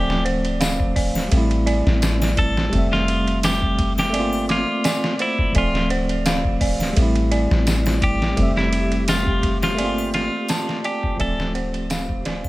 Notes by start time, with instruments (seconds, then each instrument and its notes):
Already playing: 808-style bass D1, tine electric piano F3 A3 C4, clean electric guitar G4, synth bell D5
0.10 snare
0.25 synth bell C5, ride
0.45 ride
0.60 synth bell F5, snare, ride, tambourine
0.80 kick
0.96 synth bell D5, kick, open hi-hat
1.15 snare, triangle
1.28 808-style bass A1, tine electric piano G3 A3, ride
1.34 tine electric piano C4 E4
1.51 ride
1.66 synth bell D5, ride
1.86 808-style bass A1, snare
2.02 snare, ride, tambourine
2.22 snare, triangle
2.37 clean electric guitar A4, kick, ride
2.57 snare
2.69 808-style bass F1, tine electric piano G3 A3, kick, ride
2.75 tine electric piano C4 E5
2.93 clean electric guitar F4, snare
3.08 ride
3.27 ride
3.43 clean electric guitar G4, snare, ride, tambourine
3.62 kick
3.79 kick, ride
3.98 clean electric guitar G4, snare, triangle
4.10 tine electric piano A3 A#3, synth bell D5, ride
4.14 808-style bass G1, tine electric piano C4
4.19 tine electric piano F4
4.33 triangle
4.49 clean electric guitar F4, synth bell D6, snare, ride
4.84 synth bell D5, snare, ride, tambourine
5.04 snare
5.19 clean electric guitar E4, synth bell C5, ride
5.39 kick
5.52 808-style bass D1, tine electric piano F3 A3, synth texture G4, synth bell D5, kick, ride
5.58 tine electric piano C4, clean electric guitar F4
5.75 snare
5.90 synth bell C5, ride
6.09 ride
6.26 synth bell F5, snare, ride, tambourine
6.45 kick
6.61 synth bell D5, kick, open hi-hat
6.80 snare, triangle
6.93 808-style bass A1, tine electric piano G3 A3, ride
6.99 tine electric piano C4 E4
7.16 ride
7.31 synth bell D5, ride
7.51 808-style bass A1, snare
7.67 snare, ride, tambourine
7.86 snare, triangle
8.02 clean electric guitar G4, kick, ride
8.22 snare
8.33 808-style bass F1, tine electric piano G3 A3, kick, ride
8.40 tine electric piano C4 E5
8.57 clean electric guitar E4, snare
8.73 ride
8.92 ride
9.08 clean electric guitar F4, snare, ride, tambourine
9.27 kick
9.43 kick, ride
9.63 clean electric guitar F4, snare, triangle
9.75 808-style bass G1, tine electric piano A3 A#3, synth bell D5, ride
9.81 tine electric piano C4 F4
9.98 triangle
10.14 clean electric guitar F4, snare, ride
10.48 synth bell A5, snare, ride, tambourine
10.69 snare
10.84 clean electric guitar G4, synth bell D5, ride
11.03 kick
11.16 808-style bass D1, tine electric piano F3 A3, synth bell D5, kick, ride
11.21 tine electric piano C4, clean electric guitar A4
11.40 snare
11.55 synth bell C5, ride
11.74 ride
11.90 synth bell F5, snare, ride, tambourine
12.09 kick
12.25 synth bell D5, snare, ride
12.44 kick, triangle